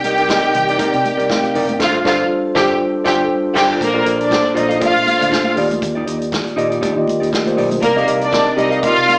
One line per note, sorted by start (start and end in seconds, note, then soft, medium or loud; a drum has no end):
0.00 0.14 C3 medium
0.00 0.15 C4 medium
0.00 0.15 D#4 medium
0.00 1.76 G4 medium
0.00 0.15 A#4 medium
0.00 0.15 D5 medium
0.00 1.76 G5 medium
0.00 closed hi-hat medium
0.04 0.36 C2 medium
0.04 0.18 D#4 medium
0.04 0.18 A#4 medium
0.04 0.18 D#5 medium
0.17 0.29 D#4 medium
0.17 0.30 A#4 medium
0.17 0.30 D5 medium
0.17 closed hi-hat soft
0.28 0.60 C3 medium
0.28 0.61 C4 medium
0.28 0.61 D#4 medium
0.28 0.47 D#4 medium
0.28 0.61 A#4 medium
0.28 0.44 A#4 medium
0.28 0.43 D5 medium
0.28 0.61 D#5 medium
0.28 kick medium
0.28 snare loud
0.28 high conga medium
0.45 muted clean electric guitar stroke soft
0.54 0.75 C2 medium
0.54 muted clean electric guitar stroke soft
0.54 closed hi-hat medium
0.54 muted conga soft
0.54 low conga medium
0.68 0.77 D#4 soft
0.68 0.79 A#4 medium
0.68 0.79 D5 medium
0.68 closed hi-hat soft
0.79 1.11 C3 medium
0.79 1.11 C4 medium
0.79 0.97 D#4 medium
0.79 1.11 D#4 medium
0.79 1.11 A#4 medium
0.79 0.93 A#4 medium
0.79 1.12 D5 medium
0.79 0.92 D5 medium
0.79 kick loud
0.79 closed hi-hat medium
0.79 muted conga medium
0.93 1.03 C3 loud
0.93 muted clean electric guitar stroke soft
0.93 closed hi-hat soft
1.04 muted clean electric guitar stroke soft
1.04 closed hi-hat medium
1.04 muted conga soft
1.17 1.28 C2 medium
1.17 1.30 D#4 soft
1.17 1.30 A#4 soft
1.17 1.30 D5 medium
1.17 closed hi-hat soft
1.29 1.61 C3 medium
1.29 1.62 C4 medium
1.29 1.62 D#4 medium
1.29 1.62 A#4 medium
1.29 1.62 F5 medium
1.29 kick loud
1.29 snare loud
1.29 high conga medium
1.43 muted clean electric guitar stroke soft
1.43 closed hi-hat soft
1.55 1.80 F#1 medium
1.55 1.73 D#4 medium
1.55 1.69 A#4 medium
1.55 1.68 D5 loud
1.55 open hi-hat medium
1.69 muted clean electric guitar stroke soft
1.69 closed hi-hat soft
1.69 high conga medium
1.79 1.98 G1 loud
1.79 1.97 G3 medium
1.79 1.97 D4 medium
1.79 1.97 F4 loud
1.79 1.97 F4 medium
1.79 1.98 F4 medium
1.79 1.98 A4 medium
1.79 1.98 C5 medium
1.79 1.98 F5 medium
1.79 kick medium
1.79 snare medium
1.79 crash medium
2.04 2.23 G1 loud
2.04 2.22 G3 medium
2.04 2.22 D4 loud
2.04 2.23 F4 medium
2.04 2.23 A4 medium
2.04 2.23 C5 medium
2.04 2.23 F5 medium
2.04 kick loud
2.04 snare loud
2.55 2.73 G1 medium
2.55 2.73 G3 medium
2.55 2.73 D4 loud
2.55 2.73 F4 medium
2.55 2.73 G4 loud
2.55 2.73 A4 loud
2.55 2.73 C5 medium
2.55 2.73 G5 medium
2.55 kick loud
2.55 snare loud
3.04 3.23 G1 medium
3.04 3.23 G3 medium
3.04 3.23 D4 loud
3.04 3.23 F4 medium
3.04 3.23 F4 loud
3.04 3.23 G4 medium
3.04 3.23 A4 medium
3.04 3.23 C5 loud
3.04 3.22 D5 loud
3.04 3.23 G5 medium
3.04 kick loud
3.04 snare medium
3.54 3.74 G1 medium
3.54 3.72 G3 medium
3.54 3.73 D4 medium
3.54 3.73 F4 medium
3.54 3.73 F4 loud
3.54 3.73 G4 medium
3.54 3.73 A4 medium
3.54 3.73 C5 medium
3.54 3.73 G5 loud
3.54 kick medium
3.54 snare medium
3.54 crash medium
3.80 4.02 A#1 loud
3.80 3.89 A#2 medium
3.80 3.89 A#3 medium
3.80 4.02 A#3 loud
3.80 3.89 D4 medium
3.80 3.90 A4 medium
3.80 4.02 A#4 loud
3.80 3.90 C5 medium
3.80 muted clean electric guitar stroke soft
3.80 kick loud
3.80 closed hi-hat medium
3.80 muted conga medium
3.94 4.18 A#2 medium
3.94 4.18 A#3 medium
3.94 4.18 D4 medium
3.94 4.05 F4 medium
3.94 4.05 A4 medium
3.94 4.18 A4 medium
3.94 4.19 C5 loud
3.94 4.06 D5 medium
4.06 4.38 A#1 medium
4.06 4.20 F4 soft
4.06 4.19 A4 medium
4.06 4.18 D5 medium
4.06 closed hi-hat medium
4.19 4.55 D4 medium
4.19 4.55 D5 medium
4.19 muted clean electric guitar stroke soft
4.19 closed hi-hat soft
4.30 4.47 A#2 medium
4.30 4.48 A#3 medium
4.30 4.48 D4 medium
4.30 4.48 A4 medium
4.30 4.48 C5 medium
4.30 muted clean electric guitar stroke soft
4.30 kick medium
4.30 snare loud
4.30 high conga medium
4.43 muted clean electric guitar stroke soft
4.55 4.77 A#1 medium
4.55 4.96 A#2 medium
4.55 4.97 A#3 medium
4.55 4.97 D4 medium
4.55 4.76 D#4 medium
4.55 4.69 F4 medium
4.55 4.69 A4 medium
4.55 4.97 A4 medium
4.55 4.97 C5 medium
4.55 4.69 D5 loud
4.55 4.76 D#5 medium
4.55 closed hi-hat medium
4.55 muted conga soft
4.69 4.79 F4 soft
4.69 4.79 A4 medium
4.69 4.80 F5 medium
4.69 closed hi-hat soft
4.80 4.98 F4 medium
4.80 5.53 F4 loud
4.80 4.94 A4 medium
4.80 4.93 D5 medium
4.80 5.53 F5 loud
4.80 kick loud
4.80 closed hi-hat medium
4.80 muted conga medium
4.95 5.05 A#2 loud
4.95 muted clean electric guitar stroke soft
5.06 muted clean electric guitar stroke soft
5.06 closed hi-hat medium
5.06 muted conga soft
5.19 5.30 D2 medium
5.19 5.56 A#2 medium
5.19 5.55 A#3 medium
5.19 5.57 D4 medium
5.19 5.30 F4 soft
5.19 5.30 A4 medium
5.19 5.57 A4 medium
5.19 5.57 C5 medium
5.19 5.31 D5 medium
5.19 closed hi-hat medium
5.31 muted clean electric guitar stroke soft
5.31 kick medium
5.31 snare loud
5.31 high conga medium
5.45 5.57 F4 medium
5.45 5.57 A4 medium
5.45 5.58 F5 medium
5.56 5.78 D#2 medium
5.56 6.37 D#3 medium
5.56 6.37 A#3 medium
5.56 5.72 D#4 medium
5.56 6.38 F4 medium
5.56 6.38 G4 medium
5.56 5.70 G4 medium
5.56 6.38 D5 medium
5.56 5.69 D5 medium
5.56 open hi-hat medium
5.71 muted clean electric guitar stroke soft
5.71 closed hi-hat soft
5.71 high conga medium
5.82 6.03 D#2 medium
5.82 muted clean electric guitar stroke soft
5.82 kick loud
5.82 closed hi-hat medium
5.82 muted conga medium
5.95 6.05 D#4 medium
5.95 6.06 G4 medium
5.95 6.07 D5 medium
6.06 6.39 D#2 medium
6.06 6.21 D#4 medium
6.06 6.20 G4 medium
6.06 6.19 D5 medium
6.06 closed hi-hat medium
6.20 muted clean electric guitar stroke soft
6.20 closed hi-hat soft
6.32 muted clean electric guitar stroke soft
6.32 kick loud
6.32 snare loud
6.32 high conga medium
6.45 muted clean electric guitar stroke soft
6.45 closed hi-hat soft
6.56 6.78 A#2 medium
6.56 6.81 D#3 medium
6.56 6.81 A#3 medium
6.56 6.71 D#4 medium
6.56 6.81 F4 medium
6.56 6.70 G4 medium
6.56 6.81 G4 medium
6.56 6.82 D5 loud
6.56 6.70 D#5 medium
6.56 closed hi-hat medium
6.70 6.80 D#4 medium
6.70 6.81 G4 medium
6.70 6.81 D5 medium
6.70 closed hi-hat soft
6.81 7.00 D#4 medium
6.81 6.96 G4 medium
6.81 6.94 D5 medium
6.81 kick loud
6.81 closed hi-hat medium
6.81 muted conga medium
6.96 7.05 D#3 medium
6.96 7.27 D#3 medium
6.96 7.27 A#3 medium
6.96 7.27 F4 medium
6.96 7.27 G4 medium
6.96 7.28 D#5 medium
6.96 muted clean electric guitar stroke soft
7.07 muted clean electric guitar stroke soft
7.07 closed hi-hat medium
7.07 muted conga soft
7.20 7.30 D#2 medium
7.20 7.30 D#4 soft
7.20 7.31 G4 medium
7.20 7.31 D5 medium
7.20 closed hi-hat soft
7.31 muted clean electric guitar stroke soft
7.31 kick medium
7.31 snare medium
7.31 high conga medium
7.46 7.69 D#3 medium
7.46 7.70 A#3 medium
7.46 7.70 F4 medium
7.46 7.70 G4 medium
7.46 7.70 C5 loud
7.46 muted clean electric guitar stroke medium
7.46 closed hi-hat soft
7.57 7.78 B1 medium
7.57 7.75 D#4 medium
7.57 7.72 G4 medium
7.57 7.71 D5 medium
7.57 open hi-hat medium
7.71 muted clean electric guitar stroke soft
7.71 closed hi-hat soft
7.71 high conga medium
7.82 8.03 C2 loud
7.82 7.91 C3 medium
7.82 8.03 A#3 loud
7.82 7.91 C4 medium
7.82 7.91 D#4 medium
7.82 8.02 A#4 loud
7.82 7.92 A#4 medium
7.82 7.92 D5 medium
7.82 muted clean electric guitar stroke soft
7.82 kick loud
7.82 closed hi-hat medium
7.82 muted conga soft
7.95 8.19 C3 medium
7.95 8.20 C4 medium
7.95 8.20 D#4 medium
7.95 8.06 G4 medium
7.95 8.20 A#4 medium
7.95 8.06 A#4 medium
7.95 8.20 D5 loud
7.95 8.07 D#5 medium
7.95 closed hi-hat soft
8.07 8.28 C2 medium
8.07 8.22 G4 medium
8.07 8.21 A#4 medium
8.07 8.20 D#5 medium
8.07 closed hi-hat medium
8.21 8.57 D4 medium
8.21 8.56 D5 medium
8.21 muted clean electric guitar stroke soft
8.21 closed hi-hat soft
8.32 8.49 C3 medium
8.32 8.49 C4 medium
8.32 8.49 D#4 medium
8.32 8.50 A#4 medium
8.32 8.50 D#5 loud
8.32 muted clean electric guitar stroke soft
8.32 kick loud
8.32 snare loud
8.32 high conga medium
8.47 muted clean electric guitar stroke soft
8.56 8.79 C2 medium
8.56 8.98 C3 loud
8.56 8.98 C4 medium
8.56 8.98 D#4 medium
8.56 8.79 D#4 medium
8.56 8.71 G4 medium
8.56 8.98 A#4 medium
8.56 8.71 A#4 medium
8.56 8.98 D5 loud
8.56 8.71 D#5 loud
8.56 8.79 D#5 medium
8.56 closed hi-hat medium
8.56 muted conga soft
8.71 8.81 G4 medium
8.71 8.82 A#4 medium
8.71 8.83 F5 medium
8.71 closed hi-hat soft
8.82 9.19 F4 loud
8.82 9.00 G4 medium
8.82 8.96 A#4 medium
8.82 8.96 D#5 medium
8.82 9.19 F5 loud
8.82 kick loud
8.82 closed hi-hat medium
8.82 muted conga medium
8.97 9.06 C3 loud
8.97 muted clean electric guitar stroke soft
8.97 closed hi-hat soft
9.08 muted clean electric guitar stroke soft
9.08 closed hi-hat medium
9.08 muted conga soft